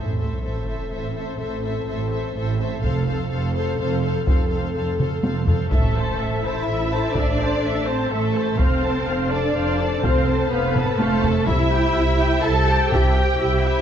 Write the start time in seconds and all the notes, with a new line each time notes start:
Already playing: A1 A2 C4 A4 C5 E5, sub drop
0.19 A4 C5 E5
0.43 A1 A2 A4 C5 E5
0.68 A4 C5 E5
0.91 A1 A2 A4 C5 E5
1.15 A4 C5 E5
1.39 A1 A2 A4 C5 E5
1.64 A4 C5 E5
1.87 A1 A2 A4 C5 E5
2.11 A4 C5 E5
2.36 A1 A2 A4 C5 E5
2.60 A4 C5 E5
2.83 F1 F2 C4 A4 C5 F5, taiko
3.07 A4 C5 F5
3.31 F1 F2 A4 C5 F5
3.56 A4 C5 F5
3.79 F1 F2 A4 C5 F5
4.04 A4 C5 F5
4.27 F1 F2 A4 C5 F5, taiko
4.50 A4 C5 F5
4.75 F1 F2 A4 C5 F5
5.00 A4 C5 F5, taiko mid
5.23 F1 F2 A4 C5 F5, taiko high
5.46 A4 C5 F5, taiko low
5.71 A1 A3 A4 C5 E5, taiko, impact
5.95 C5 A5
6.19 A1 A4 E5
6.43 E4 C5 E5 A5
6.67 A1 A4 E5
6.91 C5 A5
7.14 A1 D4 A4 D5 E5, taiko
7.39 C5 A5
7.62 A1 A4 E5
7.86 C4 C5 A5
8.10 A1 A3 A4 E5
8.35 C5 A5
8.58 F1 C4 A4 C5 F5, taiko
8.83 A4 A5
9.06 F1 C5 F5
9.30 D4 A4 D5 A5
9.55 F1 C5 F5
9.78 A4 A5
10.02 F1 C4 C5 F5, taiko
10.27 A4 A5
10.50 F1 B3 B4 C5 F5
10.74 A4 A5, taiko low-mid
10.99 F1 A3 A4 C5 F5, taiko high
11.24 A4 A5, taiko low
11.47 C2 E4 G4 C5 E5, taiko
11.72 G4 G5
11.96 C2 E4 E5
12.19 G4 G5
12.43 C2 E4 A4 E5 A5
12.67 G4 G5
12.91 C2 E4 G4 E5 G5, taiko
13.16 G4 G5
13.39 C2 E4 E5
13.63 E4 G4 E5 G5